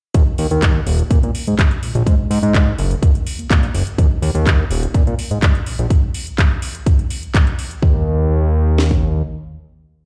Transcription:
0.14 analog synth bass D#2, kick, closed hi-hat
0.38 analog synth bass D#2, open hi-hat
0.51 analog synth bass D#2, closed hi-hat
0.62 kick, clap, closed hi-hat
0.87 analog synth bass D#1, open hi-hat
0.99 closed hi-hat
1.10 analog synth bass A#2, kick, closed hi-hat
1.23 analog synth bass A#2, closed hi-hat
1.35 open hi-hat
1.47 analog synth bass G#2, closed hi-hat
1.59 kick, clap, closed hi-hat
1.71 closed hi-hat
1.83 analog synth bass A#1, open hi-hat
1.95 analog synth bass A#1, closed hi-hat
2.06 analog synth bass G#2, kick, closed hi-hat
2.19 analog synth bass G#2
2.30 analog synth bass G#2, open hi-hat
2.43 analog synth bass G#2, closed hi-hat
2.54 kick, clap, closed hi-hat
2.78 analog synth bass F#1, open hi-hat
2.91 closed hi-hat
3.02 analog synth bass D#2, kick, closed hi-hat
3.15 closed hi-hat
3.27 open hi-hat
3.39 analog synth bass A#2, closed hi-hat
3.50 analog synth bass A#2, kick, clap, closed hi-hat
3.63 closed hi-hat
3.75 analog synth bass F#1, open hi-hat
3.87 closed hi-hat
3.98 analog synth bass D#2, kick, closed hi-hat
4.22 analog synth bass D#2, open hi-hat
4.35 analog synth bass D#2, closed hi-hat
4.46 kick, clap, closed hi-hat
4.70 analog synth bass D#1, open hi-hat
4.83 closed hi-hat
4.94 analog synth bass A#2, kick, closed hi-hat
5.07 analog synth bass A#2, closed hi-hat
5.19 open hi-hat
5.31 analog synth bass G#2, closed hi-hat
5.42 kick, clap, closed hi-hat
5.55 closed hi-hat
5.66 analog synth bass A#1, open hi-hat
5.79 analog synth bass A#1, closed hi-hat
5.90 kick, closed hi-hat
6.14 open hi-hat
6.27 closed hi-hat
6.38 kick, clap, closed hi-hat
6.62 open hi-hat
6.75 closed hi-hat
6.86 kick, closed hi-hat
6.99 closed hi-hat
7.10 open hi-hat
7.23 closed hi-hat
7.34 kick, clap, closed hi-hat
7.47 closed hi-hat
7.59 open hi-hat
7.71 closed hi-hat
7.82 analog synth bass D#2, kick
8.78 snare
8.91 kick

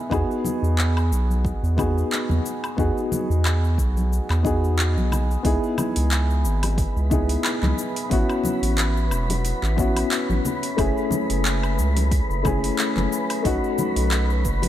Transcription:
Already playing: grand piano B3 D#4 E4 G#4
0.10 analog synth bass E2, grand piano B3 D#4 F#4 G#4, kick, cabasa, low woodblock
0.31 cabasa
0.45 high conga, low conga, cabasa
0.62 analog synth bass E2, cabasa
0.78 clap, cabasa
0.97 cabasa, low woodblock
1.11 analog synth bass B1, cabasa
1.30 high conga, cabasa
1.45 kick, cabasa
1.63 analog synth bass E2, cabasa
1.77 grand piano B3 D#4 F#4 G#4, kick, low conga, cabasa, low woodblock
1.98 cabasa
2.12 clap, cabasa
2.29 analog synth bass E2, high conga, low conga, cabasa
2.46 cabasa
2.64 cabasa, low woodblock
2.77 analog synth bass E2, grand piano B3 D#4 F#4 G#4, kick, cabasa
2.98 cabasa
3.12 high conga, low conga, cabasa
3.30 analog synth bass E2, cabasa
3.45 clap, cabasa, low woodblock
3.64 cabasa
3.78 analog synth bass B1, kick, cabasa
3.97 high conga, cabasa
4.13 cabasa
4.30 analog synth bass E2, clap, cabasa, low woodblock
4.43 grand piano B3 D#4 F#4 G#4, kick, cabasa
4.64 cabasa
4.79 clap, cabasa
4.96 analog synth bass B1, high conga, cabasa
5.12 low conga, cabasa, low woodblock
5.31 cabasa
5.43 analog synth bass C#2, grand piano B3 D#4 E4 G#4, synth texture B4 B5, kick, open hi-hat, cabasa
5.63 cabasa
5.78 high conga, low conga, cabasa, low woodblock
5.96 analog synth bass C#2, open hi-hat, cabasa
6.11 clap, open hi-hat, cabasa
6.30 cabasa
6.45 analog synth bass G#1, cabasa
6.63 open hi-hat, high bongo, high conga, cabasa, low woodblock
6.78 kick, open hi-hat, cabasa
6.96 analog synth bass C#2, cabasa
7.10 grand piano B3 D#4 E4 G#4, kick, low conga, cabasa
7.29 open hi-hat, cabasa
7.45 clap, open hi-hat, cabasa, low woodblock
7.62 analog synth bass C#2, clap, high conga, low conga, cabasa
7.78 cabasa
7.96 open hi-hat, cabasa
8.10 analog synth bass A1, grand piano B3 C#4 E4 F#4, kick, open hi-hat, cabasa
8.30 cabasa, low woodblock
8.44 high conga, low conga, cabasa
8.62 analog synth bass A1, open hi-hat, cabasa
8.78 clap, open hi-hat, cabasa
8.97 cabasa
9.11 analog synth bass E1, cabasa, low woodblock
9.29 open hi-hat, high bongo, high conga, cabasa
9.45 open hi-hat, cabasa
9.62 analog synth bass A1, clap, high bongo, cabasa
9.76 grand piano B3 C#4 E4 F#4, kick, cabasa
9.97 open hi-hat, cabasa, low woodblock
10.11 clap, open hi-hat, cabasa
10.30 analog synth bass A1, high conga, cabasa
10.45 low conga, cabasa
10.63 open hi-hat, high bongo, cabasa
10.77 analog synth bass F#1, grand piano A3 C#4 E4 G#4, kick, open hi-hat, cabasa, low woodblock
10.97 cabasa
11.11 high conga, low conga, cabasa
11.30 analog synth bass F#1, open hi-hat, cabasa
11.45 clap, open hi-hat, cabasa
11.63 cabasa, low woodblock
11.78 analog synth bass C#2, cabasa
11.96 open hi-hat, high bongo, high conga, cabasa
12.11 kick, open hi-hat, cabasa
12.30 analog synth bass F#1, cabasa
12.43 grand piano A3 C#4 E4 G#4, kick, low conga, cabasa, low woodblock
12.64 open hi-hat, cabasa
12.79 clap, open hi-hat, cabasa
12.96 analog synth bass F#1, clap, high conga, low conga, cabasa
13.13 cabasa
13.30 open hi-hat, cabasa, low woodblock
13.43 analog synth bass B1, grand piano A3 C#4 D#4 F#4, kick, open hi-hat, cabasa
13.64 cabasa
13.78 high conga, low conga, cabasa
13.96 analog synth bass B1, open hi-hat, cabasa
14.11 clap, open hi-hat, cabasa, low woodblock
14.30 cabasa
14.45 analog synth bass F#1, kick, cabasa
14.62 open hi-hat, high bongo, high conga, cabasa

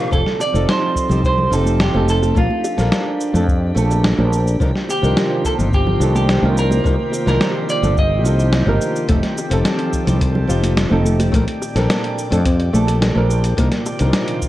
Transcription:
Already playing: clean electric guitar F4, analog synth pad G4
0.11 fretless electric bass F1, nylon-string guitar F3 C4 D#4 A4, analog synth pad F3 C4 D#4 A4, synth texture G4 G5, clean electric guitar A4, kick, cabasa
0.27 snare
0.40 clean electric guitar D5, high bongo, cabasa
0.53 fretless electric bass F1, nylon-string guitar F3 C4 D#4 A4, cabasa
0.69 clean electric guitar C5, snare, cabasa
0.96 kick, cabasa
1.10 fretless electric bass C2, nylon-string guitar F3 C4 D#4 G4, low conga, cabasa
1.24 clean electric guitar C5, kick, cabasa
1.38 low conga
1.50 fretless electric bass F1, nylon-string guitar F3 C4 D#4 G4, clean electric guitar A4, cabasa
1.66 high conga, cabasa
1.80 clean electric guitar G4, snare, cabasa
1.93 fretless electric bass F1, nylon-string guitar F3 C4 D#4 A4, high bongo, high conga
2.08 clean electric guitar A4, cabasa
2.22 high bongo, high conga, cabasa
2.35 fretless electric bass A#1, nylon-string guitar A3 C4 D4 A#4, analog synth pad D4, clean electric guitar F4, kick, cabasa
2.50 high conga
2.64 high bongo, cabasa
2.77 fretless electric bass A#1, nylon-string guitar C4 D4 A4 A#4, snare, cabasa
2.92 snare, cabasa
3.21 cabasa
3.33 fretless electric bass F2, nylon-string guitar A3 C4 D4 A4, low conga, cabasa
3.48 kick, cabasa
3.75 fretless electric bass A#1, nylon-string guitar A3 C4 D4 A4, cabasa
3.91 high bongo, cabasa
4.05 snare, cabasa
4.17 fretless electric bass A#1, nylon-string guitar C4 D4 A4 A#4, high conga
4.33 cabasa
4.47 cabasa
4.60 fretless electric bass C2, analog synth pad C3 D#3 A#3 F4 C5, nylon-string guitar F3 D4 D#4 A#4, kick, cabasa
4.76 snare
4.89 clean electric guitar G4, high bongo, cabasa
5.02 fretless electric bass C2, nylon-string guitar F3 D4 D#4 A#4, cabasa
5.17 snare, cabasa
5.45 clean electric guitar A4, kick, cabasa
5.58 fretless electric bass G1, nylon-string guitar F3 D4 D#4 A4, low conga, cabasa
5.73 clean electric guitar G4, kick, cabasa
5.87 low conga
6.00 fretless electric bass C2, nylon-string guitar F3 D4 D#4 A4, cabasa
6.15 clean electric guitar G4, high conga, cabasa
6.29 snare, cabasa
6.42 fretless electric bass C2, nylon-string guitar F3 D4 D#4 A#4, high bongo, high conga
6.57 clean electric guitar A#4, cabasa
6.71 high bongo, high conga, cabasa
6.84 fretless electric bass C2, nylon-string guitar F3 D4 D#4 A#4, kick, cabasa
6.99 high conga
7.12 high bongo, cabasa
7.26 fretless electric bass C2, nylon-string guitar F3 D4 D#4 A#4, clean electric guitar A#4, snare, cabasa
7.41 snare, cabasa
7.69 clean electric guitar D5, cabasa
7.82 fretless electric bass G1, nylon-string guitar F3 D4 D#4 A4, low conga, cabasa
7.97 clean electric guitar D#5, kick, cabasa
8.24 fretless electric bass C2, nylon-string guitar F3 C4 D#4 A4, cabasa
8.39 high bongo, cabasa
8.53 snare, cabasa
8.66 fretless electric bass G1, nylon-string guitar F3 D4 D#4 A#4, high conga
8.82 cabasa
8.96 cabasa
9.08 fretless electric bass F1, nylon-string guitar F3 C4 D#4 A4, analog synth pad F3 C4 A4, synth arpeggio sound A3, kick, closed hi-hat, cabasa
9.23 snare, closed hi-hat
9.37 high bongo, cabasa
9.50 fretless electric bass F1, nylon-string guitar F3 C4 D#4 A4, closed hi-hat, cabasa
9.65 snare, closed hi-hat, cabasa
9.79 closed hi-hat
9.93 kick, cabasa
10.06 fretless electric bass C2, nylon-string guitar F3 C4 D#4 G4, closed hi-hat, low conga, cabasa
10.21 kick, closed hi-hat, cabasa
10.35 low conga
10.47 fretless electric bass F1, nylon-string guitar F3 C4 D#4 G4, synth arpeggio sound F4, cabasa
10.62 closed hi-hat, high conga, cabasa
10.77 snare, closed hi-hat, cabasa
10.89 fretless electric bass F1, nylon-string guitar F3 C4 D#4 A4, high bongo, high conga
11.05 synth arpeggio sound A3, cabasa
11.19 closed hi-hat, high bongo, high conga, cabasa
11.32 fretless electric bass A#1, analog synth pad A#2 D5, nylon-string guitar A3 C4 D4 A#4, kick, closed hi-hat, cabasa
11.47 closed hi-hat, high conga
11.61 high bongo, cabasa
11.75 fretless electric bass A#1, nylon-string guitar C4 D4 A4 A#4, snare, closed hi-hat, cabasa
11.89 synth arpeggio sound A#3, snare, closed hi-hat, cabasa
12.04 closed hi-hat
12.18 cabasa
12.30 fretless electric bass F2, nylon-string guitar A3 C4 D4 A4, closed hi-hat, low conga, cabasa
12.45 synth arpeggio sound C4, kick, closed hi-hat, cabasa
12.60 closed hi-hat
12.73 fretless electric bass A#1, nylon-string guitar A3 C4 D4 A4, synth arpeggio sound A3, cabasa
12.87 closed hi-hat, high bongo, cabasa
13.01 synth arpeggio sound A#3, snare, closed hi-hat, cabasa
13.14 fretless electric bass A#1, nylon-string guitar C4 D4 A4 A#4, high conga
13.30 cabasa
13.44 closed hi-hat, cabasa
13.57 fretless electric bass C2, analog synth pad C3 D#3 F4, nylon-string guitar F3 D4 D#4 A#4, synth arpeggio sound A#3, kick, closed hi-hat, cabasa
13.72 snare, closed hi-hat
13.86 high bongo, cabasa
13.99 fretless electric bass C2, nylon-string guitar F3 D4 D#4 A#4, closed hi-hat, cabasa
14.13 snare, closed hi-hat, cabasa
14.28 closed hi-hat
14.42 kick, cabasa

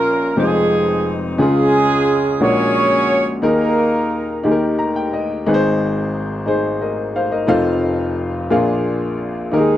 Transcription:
Already playing: upright piano A#1 A#2 C#4 F4 A#4, horn section A#3 C#4 F4 A#4
0.36 upright piano F1 F2 G#3 C4 D#4 F4 C5, horn section G#3 C4 D#4 G#4
1.38 upright piano C#2 C#3 C#4 F4 G#4, horn section G#3 C#4 F4 G#4
2.40 upright piano A#1 A#2 G#3 C#4 D4 F#4 A#4, horn section C#4 F#4 G#4 C#5
3.42 upright piano D#2 D#3 D#4 G#4 A#4, horn section A#3 D#4 A#4
4.43 upright piano D#2 D#3 D#4 G4 G#4
4.52 upright piano A#4
4.79 upright piano A#5
4.96 upright piano G5
5.13 upright piano D#5
5.46 upright piano G#1 G#2 D#4 G#4 B4
5.54 upright piano C5
6.46 upright piano D#4 G#4 C5
6.82 upright piano A#4 D#5
7.16 upright piano C5 F5
7.32 upright piano A#4 D#5
7.47 upright piano F1 F2 D#4 F4 A4 C5 F5
8.50 upright piano A#1 A#2 D4 F4 G#4 A#4 F5
9.51 upright piano D#2 D#3 D#4 G4 A#4, horn section G#3 D#4 G#4
9.59 upright piano G#4

